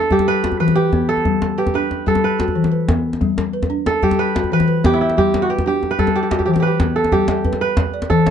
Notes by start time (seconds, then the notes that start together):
Already playing: D4 A4 B4
0.11 G3 G4, djembe slap, djembe bass
0.19 djembe slap, djembe tone
0.28 B4
0.44 F#4, djembe slap, djembe tone
0.52 djembe bass
0.60 E3 B4
0.68 djembe slap, djembe tone
0.75 G4 B4, djembe slap
0.85 djembe slap
0.92 B3, djembe tone, djembe bass
1.09 A4
1.17 djembe tone
1.25 G3, djembe bass
1.34 djembe slap
1.42 djembe slap, djembe tone
1.58 G4 B4
1.67 djembe slap, djembe tone, djembe bass
1.74 D4 B4
1.91 djembe tone
2.06 G3 G4 A4, djembe slap, djembe bass
2.15 djembe slap, djembe tone
2.24 B4
2.39 F#4, djembe slap, djembe tone
2.48 djembe bass
2.55 E3
2.64 djembe slap, djembe tone
2.72 B4, djembe slap
2.80 djembe slap
2.88 B3, djembe slap, djembe tone, djembe bass
3.13 djembe slap, djembe tone
3.21 G3, djembe bass
3.30 djembe slap
3.38 djembe slap, djembe tone
3.53 B4
3.63 djembe slap, djembe tone, djembe bass
3.70 D4
3.86 A4, djembe slap, djembe tone
4.03 G3 G4, djembe slap, djembe bass
4.11 djembe slap, djembe tone
4.19 B4
4.35 F#4, djembe slap, djembe tone
4.44 djembe bass
4.52 E3 B4
4.60 djembe slap, djembe tone
4.68 B4, djembe slap
4.77 djembe slap
4.84 B3 G4, djembe slap, djembe tone, djembe bass
4.94 E4
5.01 E4
5.09 djembe slap
5.17 G3 G4, djembe slap, djembe bass
5.34 djembe slap, djembe tone
5.42 F#4, djembe slap
5.50 G4 B4
5.59 djembe slap, djembe tone, djembe bass
5.66 D4 G4
5.83 djembe tone
5.91 B4, djembe slap
5.99 G3 G4 A4, djembe slap, djembe bass
6.07 djembe slap, djembe tone
6.16 G4
6.23 G4
6.31 F#4 G4, djembe slap, djembe tone
6.39 G4, djembe bass
6.46 E3 G4
6.53 G4, djembe slap, djembe tone
6.60 G4 B4
6.67 G4
6.80 B3, djembe slap, djembe tone, djembe bass
6.96 A4
7.04 djembe slap, djembe tone
7.12 G3 G4, djembe bass
7.21 djembe slap
7.28 E5, djembe slap, djembe tone
7.45 B4, djembe bass
7.53 djembe slap, djembe tone
7.61 B4
7.77 djembe slap, djembe tone, djembe bass
7.94 D5
8.02 djembe slap, djembe tone
8.10 E3 A4, djembe bass
8.19 djembe slap
8.26 C#5, djembe slap, djembe tone